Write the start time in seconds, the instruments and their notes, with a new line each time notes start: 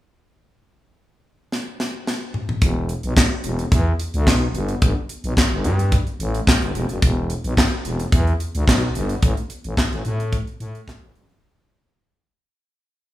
1.52 snare
1.80 snare
2.07 snare
2.34 mid tom
2.49 mid tom
2.62 fm bass E1, kick, closed hi-hat
2.89 closed hi-hat
3.03 fm bass B1, closed hi-hat
3.17 kick, snare, clap
3.44 fm bass E1, closed hi-hat
3.59 closed hi-hat
3.72 fm bass E2, kick, closed hi-hat
4.00 closed hi-hat
4.14 fm bass D2, closed hi-hat
4.27 fm bass B1, kick, snare, clap
4.54 fm bass G1, closed hi-hat
4.68 closed hi-hat
4.82 fm bass G1, kick, closed hi-hat
5.09 closed hi-hat
5.24 fm bass B1, closed hi-hat
5.37 kick, snare, clap
5.52 fm bass G1
5.64 fm bass G2, closed hi-hat
5.79 closed hi-hat
5.92 kick, closed hi-hat
6.07 closed hi-hat
6.20 fm bass A1, closed hi-hat
6.34 closed hi-hat
6.47 kick, snare, clap
6.62 fm bass G1, closed hi-hat
6.75 fm bass E1, closed hi-hat
6.89 fm bass F#1, closed hi-hat
7.02 fm bass E1, kick, closed hi-hat
7.30 closed hi-hat
7.44 fm bass B1, closed hi-hat
7.57 kick, snare, clap
7.85 fm bass E1, closed hi-hat
8.00 closed hi-hat
8.12 fm bass E2, kick, closed hi-hat
8.27 closed hi-hat
8.40 closed hi-hat
8.55 fm bass D2, closed hi-hat
8.68 fm bass B1, kick, snare, clap
8.95 fm bass G1, closed hi-hat
9.09 closed hi-hat
9.22 fm bass A1, kick, closed hi-hat
9.37 closed hi-hat
9.50 closed hi-hat
9.64 fm bass A1, closed hi-hat
9.77 kick, snare, clap
9.92 fm bass A1, closed hi-hat
10.05 fm bass A2, closed hi-hat
10.20 closed hi-hat
10.33 kick, closed hi-hat
10.47 closed hi-hat
10.60 fm bass A2, closed hi-hat
10.75 closed hi-hat
10.88 kick, snare, clap
11.02 fm bass A1
11.15 fm bass F#1, closed hi-hat
11.29 fm bass G1, closed hi-hat